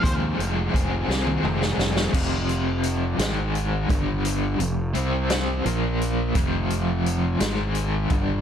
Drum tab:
CC |------------|x-----------|------------|------------|
HH |x-x-x-------|--x-x-x-x-x-|x-x-x-x-x-x-|x-x-x-x-x-x-|
SD |------o--ooo|------o-----|------o-----|------o-----|
T1 |-------o----|------------|------------|------------|
T2 |--------o---|------------|------------|------------|
BD |o---o-------|o---------o-|------------|o---------o-|